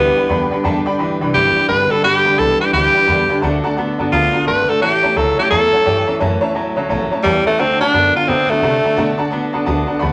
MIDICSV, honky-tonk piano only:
0, 0, Header, 1, 2, 480
1, 0, Start_track
1, 0, Key_signature, 2, "major"
1, 0, Tempo, 346821
1, 900, Time_signature, 4, 2, 24, 8
1, 14014, End_track
2, 0, Start_track
2, 0, Title_t, "Honky-tonk piano"
2, 0, Program_c, 0, 3
2, 228, Note_on_c, 0, 74, 87
2, 233, Note_on_c, 0, 79, 81
2, 238, Note_on_c, 0, 83, 102
2, 341, Note_off_c, 0, 74, 0
2, 344, Note_off_c, 0, 79, 0
2, 346, Note_off_c, 0, 83, 0
2, 405, Note_on_c, 0, 74, 118
2, 414, Note_on_c, 0, 79, 105
2, 419, Note_on_c, 0, 83, 127
2, 593, Note_off_c, 0, 74, 0
2, 598, Note_off_c, 0, 79, 0
2, 601, Note_off_c, 0, 83, 0
2, 707, Note_on_c, 0, 74, 87
2, 710, Note_on_c, 0, 79, 82
2, 716, Note_on_c, 0, 83, 100
2, 821, Note_off_c, 0, 74, 0
2, 823, Note_off_c, 0, 79, 0
2, 825, Note_off_c, 0, 83, 0
2, 885, Note_on_c, 0, 74, 114
2, 891, Note_on_c, 0, 79, 106
2, 897, Note_on_c, 0, 81, 126
2, 1074, Note_off_c, 0, 74, 0
2, 1077, Note_off_c, 0, 79, 0
2, 1080, Note_off_c, 0, 81, 0
2, 1188, Note_on_c, 0, 74, 123
2, 1199, Note_on_c, 0, 79, 112
2, 1205, Note_on_c, 0, 83, 127
2, 1302, Note_off_c, 0, 74, 0
2, 1307, Note_off_c, 0, 79, 0
2, 1310, Note_off_c, 0, 83, 0
2, 1369, Note_on_c, 0, 74, 97
2, 1375, Note_on_c, 0, 79, 83
2, 1384, Note_on_c, 0, 83, 97
2, 1556, Note_off_c, 0, 74, 0
2, 1559, Note_off_c, 0, 79, 0
2, 1563, Note_off_c, 0, 83, 0
2, 1674, Note_on_c, 0, 74, 96
2, 1682, Note_on_c, 0, 79, 87
2, 1688, Note_on_c, 0, 83, 100
2, 1785, Note_off_c, 0, 74, 0
2, 1789, Note_off_c, 0, 79, 0
2, 1792, Note_off_c, 0, 83, 0
2, 1851, Note_on_c, 0, 74, 81
2, 1863, Note_on_c, 0, 79, 75
2, 1866, Note_on_c, 0, 83, 90
2, 2037, Note_off_c, 0, 74, 0
2, 2043, Note_off_c, 0, 79, 0
2, 2045, Note_off_c, 0, 83, 0
2, 2153, Note_on_c, 0, 74, 82
2, 2160, Note_on_c, 0, 79, 75
2, 2171, Note_on_c, 0, 83, 84
2, 2265, Note_off_c, 0, 74, 0
2, 2269, Note_off_c, 0, 79, 0
2, 2274, Note_off_c, 0, 83, 0
2, 2327, Note_on_c, 0, 74, 103
2, 2334, Note_on_c, 0, 79, 93
2, 2342, Note_on_c, 0, 83, 113
2, 2516, Note_off_c, 0, 74, 0
2, 2519, Note_off_c, 0, 79, 0
2, 2523, Note_off_c, 0, 83, 0
2, 2630, Note_on_c, 0, 74, 80
2, 2634, Note_on_c, 0, 79, 68
2, 2645, Note_on_c, 0, 83, 87
2, 2744, Note_off_c, 0, 74, 0
2, 2746, Note_off_c, 0, 79, 0
2, 2751, Note_off_c, 0, 83, 0
2, 2809, Note_on_c, 0, 74, 98
2, 2816, Note_on_c, 0, 79, 91
2, 2822, Note_on_c, 0, 83, 101
2, 2997, Note_off_c, 0, 74, 0
2, 3001, Note_off_c, 0, 79, 0
2, 3003, Note_off_c, 0, 83, 0
2, 3109, Note_on_c, 0, 74, 101
2, 3120, Note_on_c, 0, 79, 97
2, 3123, Note_on_c, 0, 83, 112
2, 3223, Note_off_c, 0, 74, 0
2, 3229, Note_off_c, 0, 79, 0
2, 3230, Note_off_c, 0, 83, 0
2, 3292, Note_on_c, 0, 74, 83
2, 3299, Note_on_c, 0, 79, 75
2, 3304, Note_on_c, 0, 83, 83
2, 3479, Note_off_c, 0, 74, 0
2, 3482, Note_off_c, 0, 79, 0
2, 3485, Note_off_c, 0, 83, 0
2, 3595, Note_on_c, 0, 74, 78
2, 3599, Note_on_c, 0, 79, 72
2, 3604, Note_on_c, 0, 83, 84
2, 3707, Note_off_c, 0, 74, 0
2, 3709, Note_off_c, 0, 79, 0
2, 3711, Note_off_c, 0, 83, 0
2, 3772, Note_on_c, 0, 74, 82
2, 3784, Note_on_c, 0, 79, 70
2, 3785, Note_on_c, 0, 83, 93
2, 3959, Note_off_c, 0, 74, 0
2, 3965, Note_off_c, 0, 79, 0
2, 3965, Note_off_c, 0, 83, 0
2, 4074, Note_on_c, 0, 74, 76
2, 4077, Note_on_c, 0, 79, 71
2, 4087, Note_on_c, 0, 83, 84
2, 4186, Note_off_c, 0, 74, 0
2, 4188, Note_off_c, 0, 79, 0
2, 4193, Note_off_c, 0, 83, 0
2, 4244, Note_on_c, 0, 74, 96
2, 4252, Note_on_c, 0, 79, 93
2, 4256, Note_on_c, 0, 83, 107
2, 4435, Note_off_c, 0, 74, 0
2, 4439, Note_off_c, 0, 79, 0
2, 4441, Note_off_c, 0, 83, 0
2, 4558, Note_on_c, 0, 74, 87
2, 4562, Note_on_c, 0, 79, 83
2, 4571, Note_on_c, 0, 83, 100
2, 4669, Note_off_c, 0, 74, 0
2, 4670, Note_off_c, 0, 79, 0
2, 4675, Note_off_c, 0, 83, 0
2, 4725, Note_on_c, 0, 74, 108
2, 4734, Note_on_c, 0, 78, 100
2, 4739, Note_on_c, 0, 81, 126
2, 4916, Note_off_c, 0, 74, 0
2, 4921, Note_off_c, 0, 78, 0
2, 4923, Note_off_c, 0, 81, 0
2, 5034, Note_on_c, 0, 74, 121
2, 5042, Note_on_c, 0, 78, 105
2, 5046, Note_on_c, 0, 81, 127
2, 5147, Note_off_c, 0, 74, 0
2, 5151, Note_off_c, 0, 78, 0
2, 5153, Note_off_c, 0, 81, 0
2, 5210, Note_on_c, 0, 74, 93
2, 5219, Note_on_c, 0, 78, 84
2, 5226, Note_on_c, 0, 81, 101
2, 5399, Note_off_c, 0, 74, 0
2, 5403, Note_off_c, 0, 78, 0
2, 5406, Note_off_c, 0, 81, 0
2, 5515, Note_on_c, 0, 74, 92
2, 5522, Note_on_c, 0, 78, 85
2, 5529, Note_on_c, 0, 81, 101
2, 5627, Note_off_c, 0, 74, 0
2, 5631, Note_off_c, 0, 78, 0
2, 5635, Note_off_c, 0, 81, 0
2, 5695, Note_on_c, 0, 74, 74
2, 5698, Note_on_c, 0, 78, 74
2, 5709, Note_on_c, 0, 81, 92
2, 5881, Note_off_c, 0, 74, 0
2, 5883, Note_off_c, 0, 78, 0
2, 5888, Note_off_c, 0, 81, 0
2, 5994, Note_on_c, 0, 74, 72
2, 6006, Note_on_c, 0, 78, 70
2, 6008, Note_on_c, 0, 81, 86
2, 6107, Note_off_c, 0, 74, 0
2, 6113, Note_off_c, 0, 78, 0
2, 6114, Note_off_c, 0, 81, 0
2, 6168, Note_on_c, 0, 74, 102
2, 6182, Note_on_c, 0, 78, 90
2, 6188, Note_on_c, 0, 84, 109
2, 6358, Note_off_c, 0, 74, 0
2, 6365, Note_off_c, 0, 78, 0
2, 6368, Note_off_c, 0, 84, 0
2, 6479, Note_on_c, 0, 74, 70
2, 6485, Note_on_c, 0, 78, 67
2, 6492, Note_on_c, 0, 81, 82
2, 6590, Note_off_c, 0, 74, 0
2, 6593, Note_off_c, 0, 78, 0
2, 6596, Note_off_c, 0, 81, 0
2, 6656, Note_on_c, 0, 73, 93
2, 6665, Note_on_c, 0, 76, 88
2, 6669, Note_on_c, 0, 81, 102
2, 6842, Note_off_c, 0, 73, 0
2, 6846, Note_off_c, 0, 76, 0
2, 6848, Note_off_c, 0, 81, 0
2, 6955, Note_on_c, 0, 73, 100
2, 6963, Note_on_c, 0, 76, 91
2, 6967, Note_on_c, 0, 81, 113
2, 7068, Note_off_c, 0, 73, 0
2, 7072, Note_off_c, 0, 76, 0
2, 7074, Note_off_c, 0, 81, 0
2, 7131, Note_on_c, 0, 73, 77
2, 7137, Note_on_c, 0, 76, 71
2, 7147, Note_on_c, 0, 81, 84
2, 7320, Note_off_c, 0, 73, 0
2, 7322, Note_off_c, 0, 76, 0
2, 7327, Note_off_c, 0, 81, 0
2, 7439, Note_on_c, 0, 73, 75
2, 7447, Note_on_c, 0, 76, 68
2, 7456, Note_on_c, 0, 81, 87
2, 7550, Note_off_c, 0, 73, 0
2, 7554, Note_off_c, 0, 76, 0
2, 7558, Note_off_c, 0, 81, 0
2, 7614, Note_on_c, 0, 73, 79
2, 7625, Note_on_c, 0, 76, 73
2, 7631, Note_on_c, 0, 81, 88
2, 7801, Note_off_c, 0, 73, 0
2, 7806, Note_off_c, 0, 76, 0
2, 7809, Note_off_c, 0, 81, 0
2, 7922, Note_on_c, 0, 73, 76
2, 7931, Note_on_c, 0, 76, 68
2, 7939, Note_on_c, 0, 78, 87
2, 8031, Note_off_c, 0, 73, 0
2, 8036, Note_off_c, 0, 76, 0
2, 8040, Note_off_c, 0, 78, 0
2, 8103, Note_on_c, 0, 73, 99
2, 8115, Note_on_c, 0, 76, 90
2, 8118, Note_on_c, 0, 79, 108
2, 8285, Note_off_c, 0, 73, 0
2, 8291, Note_off_c, 0, 76, 0
2, 8293, Note_off_c, 0, 79, 0
2, 8400, Note_on_c, 0, 73, 89
2, 8405, Note_on_c, 0, 76, 83
2, 8411, Note_on_c, 0, 81, 96
2, 8510, Note_off_c, 0, 73, 0
2, 8513, Note_off_c, 0, 76, 0
2, 8516, Note_off_c, 0, 81, 0
2, 8576, Note_on_c, 0, 73, 105
2, 8584, Note_on_c, 0, 76, 105
2, 8592, Note_on_c, 0, 81, 124
2, 8762, Note_off_c, 0, 73, 0
2, 8766, Note_off_c, 0, 76, 0
2, 8770, Note_off_c, 0, 81, 0
2, 8872, Note_on_c, 0, 73, 123
2, 8880, Note_on_c, 0, 76, 111
2, 8885, Note_on_c, 0, 81, 127
2, 8986, Note_off_c, 0, 73, 0
2, 8990, Note_off_c, 0, 76, 0
2, 8993, Note_off_c, 0, 81, 0
2, 9055, Note_on_c, 0, 73, 93
2, 9058, Note_on_c, 0, 76, 83
2, 9069, Note_on_c, 0, 81, 108
2, 9241, Note_off_c, 0, 73, 0
2, 9242, Note_off_c, 0, 76, 0
2, 9248, Note_off_c, 0, 81, 0
2, 9355, Note_on_c, 0, 73, 89
2, 9364, Note_on_c, 0, 76, 87
2, 9371, Note_on_c, 0, 81, 105
2, 9468, Note_off_c, 0, 73, 0
2, 9472, Note_off_c, 0, 76, 0
2, 9475, Note_off_c, 0, 81, 0
2, 9542, Note_on_c, 0, 73, 97
2, 9546, Note_on_c, 0, 76, 88
2, 9553, Note_on_c, 0, 81, 102
2, 9724, Note_off_c, 0, 73, 0
2, 9726, Note_off_c, 0, 76, 0
2, 9730, Note_off_c, 0, 81, 0
2, 9845, Note_on_c, 0, 73, 92
2, 9852, Note_on_c, 0, 76, 86
2, 9860, Note_on_c, 0, 81, 100
2, 9952, Note_off_c, 0, 73, 0
2, 9956, Note_off_c, 0, 76, 0
2, 9960, Note_off_c, 0, 81, 0
2, 10020, Note_on_c, 0, 73, 98
2, 10028, Note_on_c, 0, 76, 92
2, 10033, Note_on_c, 0, 81, 115
2, 10203, Note_off_c, 0, 73, 0
2, 10207, Note_off_c, 0, 76, 0
2, 10209, Note_off_c, 0, 81, 0
2, 10312, Note_on_c, 0, 73, 73
2, 10318, Note_on_c, 0, 76, 70
2, 10325, Note_on_c, 0, 81, 80
2, 10425, Note_off_c, 0, 73, 0
2, 10428, Note_off_c, 0, 76, 0
2, 10432, Note_off_c, 0, 81, 0
2, 10497, Note_on_c, 0, 74, 91
2, 10501, Note_on_c, 0, 78, 87
2, 10507, Note_on_c, 0, 81, 105
2, 10681, Note_off_c, 0, 74, 0
2, 10683, Note_off_c, 0, 78, 0
2, 10686, Note_off_c, 0, 81, 0
2, 10786, Note_on_c, 0, 74, 100
2, 10797, Note_on_c, 0, 78, 91
2, 10802, Note_on_c, 0, 81, 116
2, 10902, Note_off_c, 0, 74, 0
2, 10907, Note_off_c, 0, 78, 0
2, 10910, Note_off_c, 0, 81, 0
2, 10981, Note_on_c, 0, 74, 78
2, 10988, Note_on_c, 0, 78, 72
2, 10996, Note_on_c, 0, 81, 91
2, 11163, Note_off_c, 0, 74, 0
2, 11166, Note_off_c, 0, 78, 0
2, 11170, Note_off_c, 0, 81, 0
2, 11284, Note_on_c, 0, 74, 78
2, 11291, Note_on_c, 0, 78, 77
2, 11297, Note_on_c, 0, 81, 91
2, 11390, Note_off_c, 0, 74, 0
2, 11394, Note_off_c, 0, 78, 0
2, 11397, Note_off_c, 0, 81, 0
2, 11464, Note_on_c, 0, 74, 83
2, 11473, Note_on_c, 0, 78, 73
2, 11476, Note_on_c, 0, 81, 90
2, 11644, Note_off_c, 0, 74, 0
2, 11648, Note_off_c, 0, 78, 0
2, 11650, Note_off_c, 0, 81, 0
2, 11766, Note_on_c, 0, 74, 77
2, 11768, Note_on_c, 0, 78, 70
2, 11779, Note_on_c, 0, 81, 88
2, 11871, Note_off_c, 0, 74, 0
2, 11872, Note_off_c, 0, 78, 0
2, 11877, Note_off_c, 0, 81, 0
2, 11937, Note_on_c, 0, 74, 99
2, 11943, Note_on_c, 0, 78, 94
2, 11948, Note_on_c, 0, 81, 112
2, 12119, Note_off_c, 0, 74, 0
2, 12122, Note_off_c, 0, 78, 0
2, 12125, Note_off_c, 0, 81, 0
2, 12238, Note_on_c, 0, 74, 73
2, 12245, Note_on_c, 0, 78, 71
2, 12252, Note_on_c, 0, 81, 87
2, 12347, Note_off_c, 0, 74, 0
2, 12350, Note_off_c, 0, 78, 0
2, 12353, Note_off_c, 0, 81, 0
2, 12414, Note_on_c, 0, 74, 108
2, 12420, Note_on_c, 0, 78, 106
2, 12430, Note_on_c, 0, 81, 127
2, 12597, Note_off_c, 0, 74, 0
2, 12600, Note_off_c, 0, 78, 0
2, 12606, Note_off_c, 0, 81, 0
2, 12703, Note_on_c, 0, 74, 120
2, 12711, Note_on_c, 0, 78, 110
2, 12715, Note_on_c, 0, 81, 127
2, 12819, Note_off_c, 0, 74, 0
2, 12823, Note_off_c, 0, 78, 0
2, 12824, Note_off_c, 0, 81, 0
2, 12880, Note_on_c, 0, 74, 97
2, 12887, Note_on_c, 0, 78, 88
2, 12894, Note_on_c, 0, 81, 108
2, 13070, Note_off_c, 0, 74, 0
2, 13073, Note_off_c, 0, 78, 0
2, 13077, Note_off_c, 0, 81, 0
2, 13192, Note_on_c, 0, 74, 97
2, 13199, Note_on_c, 0, 78, 88
2, 13201, Note_on_c, 0, 81, 106
2, 13302, Note_off_c, 0, 74, 0
2, 13306, Note_off_c, 0, 78, 0
2, 13307, Note_off_c, 0, 81, 0
2, 13362, Note_on_c, 0, 74, 100
2, 13368, Note_on_c, 0, 78, 88
2, 13376, Note_on_c, 0, 81, 108
2, 13550, Note_off_c, 0, 74, 0
2, 13554, Note_off_c, 0, 78, 0
2, 13557, Note_off_c, 0, 81, 0
2, 13660, Note_on_c, 0, 74, 97
2, 13667, Note_on_c, 0, 81, 99
2, 13668, Note_on_c, 0, 78, 84
2, 13731, Note_off_c, 0, 78, 0
2, 13752, Note_on_c, 0, 78, 77
2, 13776, Note_off_c, 0, 74, 0
2, 13783, Note_off_c, 0, 81, 0
2, 13817, Note_off_c, 0, 78, 0
2, 13830, Note_on_c, 0, 74, 121
2, 13838, Note_on_c, 0, 78, 111
2, 13846, Note_on_c, 0, 83, 127
2, 14014, Note_off_c, 0, 74, 0
2, 14014, Note_off_c, 0, 78, 0
2, 14014, Note_off_c, 0, 83, 0
2, 14014, End_track
0, 0, End_of_file